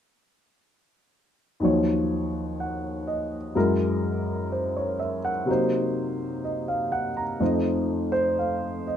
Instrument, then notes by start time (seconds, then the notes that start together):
grand piano
1.60 D#2 D#3 F3 F#3
1.65 C#5
2.60 F#5
3.07 D#5
3.55 F#2 F#3 G#3 E4 A#4
4.52 C5
4.77 C#5
4.99 E5
5.25 F#5
5.46 C3 F#3 A#3
5.50 D#4 C5
6.44 D#5
6.68 F5
6.92 F#5
7.17 A#5
7.40 F2 F3 A3 D#4 C5
8.12 C5
8.39 F5
8.87 D#5